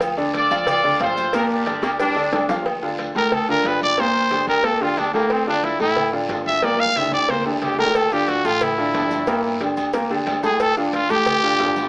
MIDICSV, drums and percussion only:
0, 0, Header, 1, 2, 480
1, 0, Start_track
1, 0, Key_signature, -1, "minor"
1, 0, Tempo, 330943
1, 17, Time_signature, 4, 2, 24, 8
1, 17239, End_track
2, 0, Start_track
2, 0, Title_t, "Drums"
2, 8, Note_on_c, 9, 56, 114
2, 17, Note_on_c, 9, 68, 105
2, 19, Note_on_c, 9, 74, 78
2, 21, Note_on_c, 9, 70, 100
2, 23, Note_on_c, 9, 63, 38
2, 153, Note_off_c, 9, 56, 0
2, 162, Note_off_c, 9, 68, 0
2, 164, Note_off_c, 9, 74, 0
2, 166, Note_off_c, 9, 70, 0
2, 169, Note_off_c, 9, 63, 0
2, 260, Note_on_c, 9, 70, 34
2, 262, Note_on_c, 9, 63, 37
2, 263, Note_on_c, 9, 68, 76
2, 405, Note_off_c, 9, 70, 0
2, 407, Note_off_c, 9, 63, 0
2, 408, Note_off_c, 9, 68, 0
2, 489, Note_on_c, 9, 56, 77
2, 495, Note_on_c, 9, 63, 62
2, 499, Note_on_c, 9, 73, 76
2, 501, Note_on_c, 9, 70, 33
2, 506, Note_on_c, 9, 66, 66
2, 634, Note_off_c, 9, 56, 0
2, 640, Note_off_c, 9, 63, 0
2, 644, Note_off_c, 9, 73, 0
2, 646, Note_off_c, 9, 70, 0
2, 652, Note_off_c, 9, 66, 0
2, 737, Note_on_c, 9, 73, 76
2, 738, Note_on_c, 9, 70, 76
2, 740, Note_on_c, 9, 68, 90
2, 882, Note_off_c, 9, 73, 0
2, 883, Note_off_c, 9, 70, 0
2, 885, Note_off_c, 9, 68, 0
2, 966, Note_on_c, 9, 56, 118
2, 973, Note_on_c, 9, 63, 36
2, 973, Note_on_c, 9, 64, 92
2, 975, Note_on_c, 9, 74, 76
2, 978, Note_on_c, 9, 70, 98
2, 982, Note_on_c, 9, 68, 123
2, 1111, Note_off_c, 9, 56, 0
2, 1118, Note_off_c, 9, 63, 0
2, 1118, Note_off_c, 9, 64, 0
2, 1120, Note_off_c, 9, 74, 0
2, 1123, Note_off_c, 9, 70, 0
2, 1127, Note_off_c, 9, 68, 0
2, 1214, Note_on_c, 9, 70, 30
2, 1217, Note_on_c, 9, 63, 36
2, 1217, Note_on_c, 9, 64, 81
2, 1359, Note_off_c, 9, 70, 0
2, 1362, Note_off_c, 9, 63, 0
2, 1362, Note_off_c, 9, 64, 0
2, 1454, Note_on_c, 9, 56, 75
2, 1455, Note_on_c, 9, 63, 91
2, 1457, Note_on_c, 9, 70, 31
2, 1460, Note_on_c, 9, 73, 72
2, 1462, Note_on_c, 9, 66, 95
2, 1462, Note_on_c, 9, 68, 94
2, 1599, Note_off_c, 9, 56, 0
2, 1600, Note_off_c, 9, 63, 0
2, 1602, Note_off_c, 9, 70, 0
2, 1605, Note_off_c, 9, 73, 0
2, 1607, Note_off_c, 9, 66, 0
2, 1607, Note_off_c, 9, 68, 0
2, 1697, Note_on_c, 9, 63, 89
2, 1698, Note_on_c, 9, 73, 71
2, 1699, Note_on_c, 9, 70, 76
2, 1842, Note_off_c, 9, 63, 0
2, 1843, Note_off_c, 9, 73, 0
2, 1844, Note_off_c, 9, 70, 0
2, 1930, Note_on_c, 9, 56, 102
2, 1935, Note_on_c, 9, 74, 77
2, 1936, Note_on_c, 9, 70, 98
2, 1937, Note_on_c, 9, 63, 41
2, 1942, Note_on_c, 9, 68, 112
2, 2075, Note_off_c, 9, 56, 0
2, 2080, Note_off_c, 9, 74, 0
2, 2081, Note_off_c, 9, 70, 0
2, 2082, Note_off_c, 9, 63, 0
2, 2087, Note_off_c, 9, 68, 0
2, 2176, Note_on_c, 9, 70, 35
2, 2178, Note_on_c, 9, 63, 39
2, 2321, Note_off_c, 9, 70, 0
2, 2323, Note_off_c, 9, 63, 0
2, 2412, Note_on_c, 9, 56, 76
2, 2414, Note_on_c, 9, 73, 83
2, 2417, Note_on_c, 9, 70, 31
2, 2418, Note_on_c, 9, 63, 60
2, 2425, Note_on_c, 9, 66, 61
2, 2425, Note_on_c, 9, 68, 86
2, 2557, Note_off_c, 9, 56, 0
2, 2560, Note_off_c, 9, 73, 0
2, 2562, Note_off_c, 9, 70, 0
2, 2563, Note_off_c, 9, 63, 0
2, 2570, Note_off_c, 9, 66, 0
2, 2570, Note_off_c, 9, 68, 0
2, 2651, Note_on_c, 9, 60, 90
2, 2656, Note_on_c, 9, 73, 75
2, 2657, Note_on_c, 9, 70, 74
2, 2661, Note_on_c, 9, 68, 119
2, 2797, Note_off_c, 9, 60, 0
2, 2801, Note_off_c, 9, 73, 0
2, 2802, Note_off_c, 9, 70, 0
2, 2806, Note_off_c, 9, 68, 0
2, 2892, Note_on_c, 9, 63, 37
2, 2893, Note_on_c, 9, 56, 113
2, 2893, Note_on_c, 9, 74, 74
2, 2894, Note_on_c, 9, 70, 96
2, 2900, Note_on_c, 9, 65, 83
2, 3037, Note_off_c, 9, 63, 0
2, 3038, Note_off_c, 9, 56, 0
2, 3038, Note_off_c, 9, 74, 0
2, 3039, Note_off_c, 9, 70, 0
2, 3045, Note_off_c, 9, 65, 0
2, 3132, Note_on_c, 9, 63, 35
2, 3139, Note_on_c, 9, 68, 86
2, 3139, Note_on_c, 9, 70, 29
2, 3277, Note_off_c, 9, 63, 0
2, 3284, Note_off_c, 9, 68, 0
2, 3284, Note_off_c, 9, 70, 0
2, 3372, Note_on_c, 9, 56, 79
2, 3372, Note_on_c, 9, 61, 87
2, 3372, Note_on_c, 9, 63, 94
2, 3376, Note_on_c, 9, 66, 90
2, 3376, Note_on_c, 9, 68, 109
2, 3378, Note_on_c, 9, 70, 31
2, 3378, Note_on_c, 9, 73, 72
2, 3517, Note_off_c, 9, 56, 0
2, 3517, Note_off_c, 9, 61, 0
2, 3517, Note_off_c, 9, 63, 0
2, 3521, Note_off_c, 9, 66, 0
2, 3521, Note_off_c, 9, 68, 0
2, 3523, Note_off_c, 9, 70, 0
2, 3523, Note_off_c, 9, 73, 0
2, 3606, Note_on_c, 9, 63, 87
2, 3610, Note_on_c, 9, 70, 77
2, 3611, Note_on_c, 9, 61, 99
2, 3615, Note_on_c, 9, 66, 113
2, 3615, Note_on_c, 9, 73, 70
2, 3751, Note_off_c, 9, 63, 0
2, 3755, Note_off_c, 9, 70, 0
2, 3757, Note_off_c, 9, 61, 0
2, 3760, Note_off_c, 9, 66, 0
2, 3760, Note_off_c, 9, 73, 0
2, 3851, Note_on_c, 9, 68, 102
2, 3853, Note_on_c, 9, 74, 75
2, 3855, Note_on_c, 9, 56, 104
2, 3857, Note_on_c, 9, 63, 36
2, 3996, Note_off_c, 9, 68, 0
2, 3998, Note_off_c, 9, 74, 0
2, 4000, Note_off_c, 9, 56, 0
2, 4002, Note_off_c, 9, 63, 0
2, 4097, Note_on_c, 9, 68, 67
2, 4102, Note_on_c, 9, 63, 36
2, 4242, Note_off_c, 9, 68, 0
2, 4247, Note_off_c, 9, 63, 0
2, 4330, Note_on_c, 9, 56, 75
2, 4337, Note_on_c, 9, 73, 78
2, 4339, Note_on_c, 9, 63, 62
2, 4340, Note_on_c, 9, 66, 58
2, 4476, Note_off_c, 9, 56, 0
2, 4482, Note_off_c, 9, 73, 0
2, 4484, Note_off_c, 9, 63, 0
2, 4486, Note_off_c, 9, 66, 0
2, 4577, Note_on_c, 9, 68, 87
2, 4580, Note_on_c, 9, 73, 75
2, 4723, Note_off_c, 9, 68, 0
2, 4725, Note_off_c, 9, 73, 0
2, 4813, Note_on_c, 9, 56, 106
2, 4818, Note_on_c, 9, 68, 113
2, 4820, Note_on_c, 9, 74, 68
2, 4821, Note_on_c, 9, 63, 34
2, 4821, Note_on_c, 9, 64, 81
2, 4958, Note_off_c, 9, 56, 0
2, 4963, Note_off_c, 9, 68, 0
2, 4965, Note_off_c, 9, 74, 0
2, 4966, Note_off_c, 9, 63, 0
2, 4966, Note_off_c, 9, 64, 0
2, 5055, Note_on_c, 9, 63, 37
2, 5055, Note_on_c, 9, 64, 71
2, 5200, Note_off_c, 9, 63, 0
2, 5200, Note_off_c, 9, 64, 0
2, 5291, Note_on_c, 9, 63, 90
2, 5296, Note_on_c, 9, 56, 77
2, 5297, Note_on_c, 9, 73, 72
2, 5304, Note_on_c, 9, 66, 83
2, 5304, Note_on_c, 9, 68, 89
2, 5436, Note_off_c, 9, 63, 0
2, 5441, Note_off_c, 9, 56, 0
2, 5442, Note_off_c, 9, 73, 0
2, 5449, Note_off_c, 9, 66, 0
2, 5449, Note_off_c, 9, 68, 0
2, 5534, Note_on_c, 9, 73, 68
2, 5536, Note_on_c, 9, 63, 89
2, 5679, Note_off_c, 9, 73, 0
2, 5681, Note_off_c, 9, 63, 0
2, 5769, Note_on_c, 9, 56, 95
2, 5770, Note_on_c, 9, 63, 36
2, 5773, Note_on_c, 9, 74, 75
2, 5780, Note_on_c, 9, 68, 98
2, 5914, Note_off_c, 9, 56, 0
2, 5915, Note_off_c, 9, 63, 0
2, 5918, Note_off_c, 9, 74, 0
2, 5925, Note_off_c, 9, 68, 0
2, 6010, Note_on_c, 9, 63, 37
2, 6155, Note_off_c, 9, 63, 0
2, 6247, Note_on_c, 9, 56, 74
2, 6250, Note_on_c, 9, 63, 63
2, 6253, Note_on_c, 9, 73, 73
2, 6257, Note_on_c, 9, 66, 65
2, 6257, Note_on_c, 9, 68, 88
2, 6392, Note_off_c, 9, 56, 0
2, 6395, Note_off_c, 9, 63, 0
2, 6398, Note_off_c, 9, 73, 0
2, 6402, Note_off_c, 9, 66, 0
2, 6402, Note_off_c, 9, 68, 0
2, 6489, Note_on_c, 9, 63, 37
2, 6493, Note_on_c, 9, 68, 110
2, 6496, Note_on_c, 9, 73, 77
2, 6634, Note_off_c, 9, 63, 0
2, 6638, Note_off_c, 9, 68, 0
2, 6641, Note_off_c, 9, 73, 0
2, 6726, Note_on_c, 9, 56, 111
2, 6732, Note_on_c, 9, 63, 35
2, 6736, Note_on_c, 9, 74, 74
2, 6871, Note_off_c, 9, 56, 0
2, 6877, Note_off_c, 9, 63, 0
2, 6881, Note_off_c, 9, 74, 0
2, 6975, Note_on_c, 9, 68, 89
2, 6976, Note_on_c, 9, 63, 35
2, 7120, Note_off_c, 9, 68, 0
2, 7121, Note_off_c, 9, 63, 0
2, 7208, Note_on_c, 9, 56, 72
2, 7214, Note_on_c, 9, 63, 87
2, 7215, Note_on_c, 9, 73, 71
2, 7216, Note_on_c, 9, 66, 87
2, 7216, Note_on_c, 9, 68, 117
2, 7353, Note_off_c, 9, 56, 0
2, 7359, Note_off_c, 9, 63, 0
2, 7360, Note_off_c, 9, 73, 0
2, 7361, Note_off_c, 9, 66, 0
2, 7361, Note_off_c, 9, 68, 0
2, 7446, Note_on_c, 9, 63, 88
2, 7458, Note_on_c, 9, 73, 68
2, 7591, Note_off_c, 9, 63, 0
2, 7603, Note_off_c, 9, 73, 0
2, 7687, Note_on_c, 9, 56, 106
2, 7691, Note_on_c, 9, 68, 104
2, 7692, Note_on_c, 9, 63, 37
2, 7696, Note_on_c, 9, 74, 75
2, 7832, Note_off_c, 9, 56, 0
2, 7836, Note_off_c, 9, 68, 0
2, 7838, Note_off_c, 9, 63, 0
2, 7841, Note_off_c, 9, 74, 0
2, 7931, Note_on_c, 9, 63, 37
2, 7932, Note_on_c, 9, 68, 67
2, 8076, Note_off_c, 9, 63, 0
2, 8077, Note_off_c, 9, 68, 0
2, 8168, Note_on_c, 9, 63, 57
2, 8170, Note_on_c, 9, 56, 70
2, 8172, Note_on_c, 9, 66, 60
2, 8177, Note_on_c, 9, 73, 73
2, 8313, Note_off_c, 9, 63, 0
2, 8315, Note_off_c, 9, 56, 0
2, 8317, Note_off_c, 9, 66, 0
2, 8322, Note_off_c, 9, 73, 0
2, 8408, Note_on_c, 9, 68, 89
2, 8418, Note_on_c, 9, 73, 76
2, 8553, Note_off_c, 9, 68, 0
2, 8563, Note_off_c, 9, 73, 0
2, 8648, Note_on_c, 9, 63, 35
2, 8648, Note_on_c, 9, 64, 94
2, 8650, Note_on_c, 9, 56, 111
2, 8651, Note_on_c, 9, 68, 106
2, 8655, Note_on_c, 9, 74, 69
2, 8793, Note_off_c, 9, 63, 0
2, 8793, Note_off_c, 9, 64, 0
2, 8795, Note_off_c, 9, 56, 0
2, 8796, Note_off_c, 9, 68, 0
2, 8800, Note_off_c, 9, 74, 0
2, 8886, Note_on_c, 9, 63, 36
2, 9031, Note_off_c, 9, 63, 0
2, 9127, Note_on_c, 9, 56, 75
2, 9129, Note_on_c, 9, 63, 91
2, 9131, Note_on_c, 9, 66, 91
2, 9131, Note_on_c, 9, 68, 88
2, 9135, Note_on_c, 9, 73, 73
2, 9272, Note_off_c, 9, 56, 0
2, 9274, Note_off_c, 9, 63, 0
2, 9276, Note_off_c, 9, 66, 0
2, 9276, Note_off_c, 9, 68, 0
2, 9280, Note_off_c, 9, 73, 0
2, 9371, Note_on_c, 9, 63, 88
2, 9379, Note_on_c, 9, 73, 73
2, 9516, Note_off_c, 9, 63, 0
2, 9524, Note_off_c, 9, 73, 0
2, 9606, Note_on_c, 9, 56, 105
2, 9610, Note_on_c, 9, 68, 104
2, 9611, Note_on_c, 9, 63, 91
2, 9618, Note_on_c, 9, 74, 72
2, 9751, Note_off_c, 9, 56, 0
2, 9755, Note_off_c, 9, 68, 0
2, 9756, Note_off_c, 9, 63, 0
2, 9763, Note_off_c, 9, 74, 0
2, 9774, Note_on_c, 9, 63, 95
2, 9919, Note_off_c, 9, 63, 0
2, 9938, Note_on_c, 9, 63, 105
2, 10083, Note_off_c, 9, 63, 0
2, 10091, Note_on_c, 9, 56, 73
2, 10094, Note_on_c, 9, 65, 77
2, 10094, Note_on_c, 9, 68, 86
2, 10096, Note_on_c, 9, 64, 97
2, 10097, Note_on_c, 9, 73, 79
2, 10236, Note_off_c, 9, 56, 0
2, 10239, Note_off_c, 9, 65, 0
2, 10239, Note_off_c, 9, 68, 0
2, 10241, Note_off_c, 9, 64, 0
2, 10242, Note_off_c, 9, 73, 0
2, 10261, Note_on_c, 9, 64, 95
2, 10329, Note_on_c, 9, 65, 97
2, 10329, Note_on_c, 9, 68, 112
2, 10335, Note_on_c, 9, 73, 73
2, 10406, Note_off_c, 9, 64, 0
2, 10474, Note_off_c, 9, 65, 0
2, 10474, Note_off_c, 9, 68, 0
2, 10480, Note_off_c, 9, 73, 0
2, 10567, Note_on_c, 9, 56, 102
2, 10575, Note_on_c, 9, 74, 75
2, 10581, Note_on_c, 9, 64, 114
2, 10712, Note_off_c, 9, 56, 0
2, 10720, Note_off_c, 9, 74, 0
2, 10726, Note_off_c, 9, 64, 0
2, 10735, Note_on_c, 9, 64, 80
2, 10815, Note_on_c, 9, 66, 76
2, 10815, Note_on_c, 9, 68, 91
2, 10880, Note_off_c, 9, 64, 0
2, 10960, Note_off_c, 9, 66, 0
2, 10960, Note_off_c, 9, 68, 0
2, 11048, Note_on_c, 9, 56, 70
2, 11054, Note_on_c, 9, 66, 98
2, 11054, Note_on_c, 9, 68, 110
2, 11056, Note_on_c, 9, 64, 79
2, 11059, Note_on_c, 9, 73, 68
2, 11193, Note_off_c, 9, 56, 0
2, 11199, Note_off_c, 9, 66, 0
2, 11199, Note_off_c, 9, 68, 0
2, 11201, Note_off_c, 9, 64, 0
2, 11204, Note_off_c, 9, 73, 0
2, 11217, Note_on_c, 9, 64, 94
2, 11293, Note_on_c, 9, 66, 91
2, 11294, Note_on_c, 9, 73, 67
2, 11362, Note_off_c, 9, 64, 0
2, 11379, Note_on_c, 9, 64, 88
2, 11438, Note_off_c, 9, 66, 0
2, 11439, Note_off_c, 9, 73, 0
2, 11524, Note_off_c, 9, 64, 0
2, 11527, Note_on_c, 9, 56, 101
2, 11531, Note_on_c, 9, 74, 77
2, 11533, Note_on_c, 9, 70, 95
2, 11534, Note_on_c, 9, 68, 95
2, 11536, Note_on_c, 9, 63, 36
2, 11672, Note_off_c, 9, 56, 0
2, 11676, Note_off_c, 9, 74, 0
2, 11678, Note_off_c, 9, 70, 0
2, 11679, Note_off_c, 9, 68, 0
2, 11681, Note_off_c, 9, 63, 0
2, 11772, Note_on_c, 9, 63, 35
2, 11774, Note_on_c, 9, 70, 34
2, 11775, Note_on_c, 9, 68, 73
2, 11917, Note_off_c, 9, 63, 0
2, 11919, Note_off_c, 9, 70, 0
2, 11920, Note_off_c, 9, 68, 0
2, 12008, Note_on_c, 9, 56, 77
2, 12008, Note_on_c, 9, 63, 60
2, 12009, Note_on_c, 9, 70, 31
2, 12016, Note_on_c, 9, 73, 72
2, 12018, Note_on_c, 9, 66, 64
2, 12153, Note_off_c, 9, 56, 0
2, 12153, Note_off_c, 9, 63, 0
2, 12154, Note_off_c, 9, 70, 0
2, 12161, Note_off_c, 9, 73, 0
2, 12163, Note_off_c, 9, 66, 0
2, 12249, Note_on_c, 9, 70, 70
2, 12254, Note_on_c, 9, 68, 89
2, 12256, Note_on_c, 9, 73, 76
2, 12394, Note_off_c, 9, 70, 0
2, 12399, Note_off_c, 9, 68, 0
2, 12401, Note_off_c, 9, 73, 0
2, 12483, Note_on_c, 9, 70, 88
2, 12491, Note_on_c, 9, 56, 104
2, 12493, Note_on_c, 9, 68, 110
2, 12494, Note_on_c, 9, 63, 36
2, 12494, Note_on_c, 9, 64, 87
2, 12497, Note_on_c, 9, 74, 74
2, 12628, Note_off_c, 9, 70, 0
2, 12636, Note_off_c, 9, 56, 0
2, 12638, Note_off_c, 9, 68, 0
2, 12639, Note_off_c, 9, 63, 0
2, 12639, Note_off_c, 9, 64, 0
2, 12642, Note_off_c, 9, 74, 0
2, 12723, Note_on_c, 9, 70, 29
2, 12727, Note_on_c, 9, 63, 37
2, 12868, Note_off_c, 9, 70, 0
2, 12872, Note_off_c, 9, 63, 0
2, 12964, Note_on_c, 9, 70, 30
2, 12967, Note_on_c, 9, 63, 90
2, 12972, Note_on_c, 9, 56, 73
2, 12976, Note_on_c, 9, 66, 90
2, 12976, Note_on_c, 9, 68, 93
2, 12976, Note_on_c, 9, 73, 68
2, 13109, Note_off_c, 9, 70, 0
2, 13112, Note_off_c, 9, 63, 0
2, 13117, Note_off_c, 9, 56, 0
2, 13121, Note_off_c, 9, 66, 0
2, 13121, Note_off_c, 9, 68, 0
2, 13121, Note_off_c, 9, 73, 0
2, 13202, Note_on_c, 9, 63, 85
2, 13207, Note_on_c, 9, 70, 76
2, 13212, Note_on_c, 9, 73, 75
2, 13347, Note_off_c, 9, 63, 0
2, 13352, Note_off_c, 9, 70, 0
2, 13357, Note_off_c, 9, 73, 0
2, 13444, Note_on_c, 9, 70, 92
2, 13449, Note_on_c, 9, 56, 106
2, 13451, Note_on_c, 9, 74, 73
2, 13452, Note_on_c, 9, 63, 36
2, 13456, Note_on_c, 9, 68, 111
2, 13589, Note_off_c, 9, 70, 0
2, 13594, Note_off_c, 9, 56, 0
2, 13596, Note_off_c, 9, 74, 0
2, 13597, Note_off_c, 9, 63, 0
2, 13601, Note_off_c, 9, 68, 0
2, 13685, Note_on_c, 9, 70, 31
2, 13697, Note_on_c, 9, 63, 35
2, 13830, Note_off_c, 9, 70, 0
2, 13842, Note_off_c, 9, 63, 0
2, 13927, Note_on_c, 9, 63, 60
2, 13931, Note_on_c, 9, 56, 77
2, 13931, Note_on_c, 9, 70, 30
2, 13936, Note_on_c, 9, 73, 75
2, 13938, Note_on_c, 9, 66, 62
2, 13938, Note_on_c, 9, 68, 85
2, 14072, Note_off_c, 9, 63, 0
2, 14076, Note_off_c, 9, 56, 0
2, 14076, Note_off_c, 9, 70, 0
2, 14081, Note_off_c, 9, 73, 0
2, 14084, Note_off_c, 9, 66, 0
2, 14084, Note_off_c, 9, 68, 0
2, 14167, Note_on_c, 9, 70, 68
2, 14177, Note_on_c, 9, 68, 116
2, 14179, Note_on_c, 9, 73, 75
2, 14312, Note_off_c, 9, 70, 0
2, 14322, Note_off_c, 9, 68, 0
2, 14324, Note_off_c, 9, 73, 0
2, 14404, Note_on_c, 9, 70, 89
2, 14409, Note_on_c, 9, 56, 115
2, 14411, Note_on_c, 9, 63, 36
2, 14416, Note_on_c, 9, 74, 74
2, 14549, Note_off_c, 9, 70, 0
2, 14554, Note_off_c, 9, 56, 0
2, 14556, Note_off_c, 9, 63, 0
2, 14561, Note_off_c, 9, 74, 0
2, 14649, Note_on_c, 9, 63, 34
2, 14650, Note_on_c, 9, 70, 30
2, 14659, Note_on_c, 9, 68, 94
2, 14794, Note_off_c, 9, 63, 0
2, 14795, Note_off_c, 9, 70, 0
2, 14804, Note_off_c, 9, 68, 0
2, 14889, Note_on_c, 9, 56, 77
2, 14889, Note_on_c, 9, 63, 89
2, 14889, Note_on_c, 9, 70, 30
2, 14897, Note_on_c, 9, 66, 92
2, 14897, Note_on_c, 9, 68, 105
2, 14898, Note_on_c, 9, 73, 68
2, 15034, Note_off_c, 9, 56, 0
2, 15034, Note_off_c, 9, 63, 0
2, 15034, Note_off_c, 9, 70, 0
2, 15042, Note_off_c, 9, 66, 0
2, 15042, Note_off_c, 9, 68, 0
2, 15043, Note_off_c, 9, 73, 0
2, 15125, Note_on_c, 9, 63, 84
2, 15130, Note_on_c, 9, 70, 71
2, 15137, Note_on_c, 9, 73, 69
2, 15270, Note_off_c, 9, 63, 0
2, 15275, Note_off_c, 9, 70, 0
2, 15282, Note_off_c, 9, 73, 0
2, 15365, Note_on_c, 9, 63, 38
2, 15370, Note_on_c, 9, 70, 92
2, 15373, Note_on_c, 9, 56, 103
2, 15379, Note_on_c, 9, 68, 106
2, 15383, Note_on_c, 9, 74, 75
2, 15510, Note_off_c, 9, 63, 0
2, 15515, Note_off_c, 9, 70, 0
2, 15518, Note_off_c, 9, 56, 0
2, 15524, Note_off_c, 9, 68, 0
2, 15528, Note_off_c, 9, 74, 0
2, 15608, Note_on_c, 9, 63, 35
2, 15614, Note_on_c, 9, 70, 34
2, 15615, Note_on_c, 9, 68, 69
2, 15754, Note_off_c, 9, 63, 0
2, 15759, Note_off_c, 9, 70, 0
2, 15760, Note_off_c, 9, 68, 0
2, 15850, Note_on_c, 9, 63, 64
2, 15852, Note_on_c, 9, 66, 61
2, 15852, Note_on_c, 9, 70, 33
2, 15855, Note_on_c, 9, 56, 77
2, 15866, Note_on_c, 9, 73, 79
2, 15995, Note_off_c, 9, 63, 0
2, 15997, Note_off_c, 9, 66, 0
2, 15997, Note_off_c, 9, 70, 0
2, 16001, Note_off_c, 9, 56, 0
2, 16011, Note_off_c, 9, 73, 0
2, 16094, Note_on_c, 9, 68, 84
2, 16096, Note_on_c, 9, 70, 70
2, 16109, Note_on_c, 9, 73, 76
2, 16239, Note_off_c, 9, 68, 0
2, 16241, Note_off_c, 9, 70, 0
2, 16254, Note_off_c, 9, 73, 0
2, 16329, Note_on_c, 9, 70, 92
2, 16332, Note_on_c, 9, 68, 117
2, 16335, Note_on_c, 9, 56, 105
2, 16342, Note_on_c, 9, 63, 35
2, 16342, Note_on_c, 9, 64, 83
2, 16474, Note_off_c, 9, 70, 0
2, 16477, Note_off_c, 9, 68, 0
2, 16480, Note_off_c, 9, 56, 0
2, 16487, Note_off_c, 9, 63, 0
2, 16487, Note_off_c, 9, 64, 0
2, 16572, Note_on_c, 9, 70, 32
2, 16717, Note_off_c, 9, 70, 0
2, 16813, Note_on_c, 9, 70, 29
2, 16814, Note_on_c, 9, 66, 93
2, 16814, Note_on_c, 9, 68, 91
2, 16818, Note_on_c, 9, 56, 72
2, 16829, Note_on_c, 9, 73, 73
2, 16830, Note_on_c, 9, 63, 86
2, 16958, Note_off_c, 9, 70, 0
2, 16960, Note_off_c, 9, 66, 0
2, 16960, Note_off_c, 9, 68, 0
2, 16963, Note_off_c, 9, 56, 0
2, 16974, Note_off_c, 9, 73, 0
2, 16975, Note_off_c, 9, 63, 0
2, 17056, Note_on_c, 9, 70, 74
2, 17064, Note_on_c, 9, 63, 83
2, 17069, Note_on_c, 9, 73, 75
2, 17201, Note_off_c, 9, 70, 0
2, 17209, Note_off_c, 9, 63, 0
2, 17214, Note_off_c, 9, 73, 0
2, 17239, End_track
0, 0, End_of_file